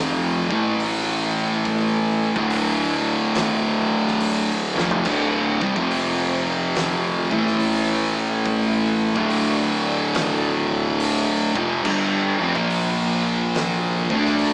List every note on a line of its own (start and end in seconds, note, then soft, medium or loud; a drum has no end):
0.00 0.47 F1 loud
0.00 0.49 F2 loud
0.00 0.49 C3 medium
0.00 0.49 F3 medium
0.00 0.49 F3 loud
0.00 0.49 C4 medium
0.00 0.49 G4 medium
0.50 2.32 A1 medium
0.50 2.35 A2 loud
0.50 2.35 E3 medium
0.50 2.34 A3 medium
0.50 2.35 A3 loud
0.50 2.34 E4 medium
0.50 2.34 A4 medium
0.50 kick loud
0.80 open hi-hat medium
1.65 kick loud
1.65 open hi-hat medium
2.35 4.72 D1 loud
2.35 4.75 D2 loud
2.35 4.75 A2 loud
2.35 5.73 D3 medium
2.35 4.75 D3 loud
2.35 5.72 A3 medium
2.35 5.73 D4 medium
2.35 kick loud
2.50 open hi-hat medium
3.35 kick loud
3.35 snare loud
3.35 open hi-hat medium
4.07 snare soft
4.20 open hi-hat medium
4.77 5.04 F1 loud
4.77 5.05 F2 medium
4.77 5.06 C3 loud
4.77 5.06 F3 loud
4.77 snare medium
4.91 floor tom loud
5.05 5.58 D1 loud
5.05 5.60 D2 loud
5.05 5.60 A2 loud
5.05 5.60 D3 loud
5.05 kick loud
5.05 crash loud
5.61 5.75 C2 medium
5.61 5.75 C3 loud
5.61 5.76 G3 loud
5.61 kick loud
5.76 7.27 F1 loud
5.76 7.30 F2 medium
5.76 7.30 C3 medium
5.76 7.30 F3 medium
5.76 7.30 F3 loud
5.76 7.30 C4 medium
5.76 7.30 G4 medium
5.76 kick loud
5.91 open hi-hat medium
6.75 snare loud
6.75 open hi-hat medium
7.31 9.12 A1 loud
7.31 9.15 A2 medium
7.31 9.15 E3 medium
7.31 9.16 A3 loud
7.31 9.15 A3 medium
7.31 9.14 E4 medium
7.31 12.51 A4 medium
7.31 kick loud
7.47 snare soft
7.60 open hi-hat medium
8.45 kick loud
8.45 open hi-hat medium
9.15 11.52 D1 loud
9.15 11.54 D2 loud
9.15 11.55 A2 loud
9.15 11.55 D3 loud
9.15 12.51 D4 medium
9.15 11.83 D5 medium
9.15 kick loud
9.30 open hi-hat medium
10.14 kick loud
10.14 snare loud
10.14 open hi-hat medium
11.00 open hi-hat medium
11.56 11.83 F1 loud
11.56 11.85 F2 loud
11.56 11.85 C3 loud
11.56 11.85 F3 loud
11.56 kick loud
11.84 12.37 G1 loud
11.84 12.39 G2 loud
11.84 12.40 D3 loud
11.84 12.54 G3 medium
11.84 12.40 G3 loud
11.84 kick loud
11.84 crash loud
12.40 12.54 F1 loud
12.40 12.55 F2 loud
12.40 12.55 C3 loud
12.53 14.06 A#1 loud
12.53 14.09 A#2 medium
12.53 14.09 F3 medium
12.53 14.08 A#3 medium
12.53 14.09 A#3 loud
12.53 14.08 F4 medium
12.53 14.08 C5 medium
12.53 kick loud
12.70 open hi-hat medium
13.55 snare loud
13.55 open hi-hat medium
14.10 14.53 D2 medium
14.10 14.53 D3 medium
14.10 14.53 A3 loud
14.10 14.53 D4 medium
14.10 14.53 D4 loud
14.10 14.53 A4 medium
14.10 14.53 D5 medium
14.10 kick loud
14.26 snare soft
14.39 open hi-hat medium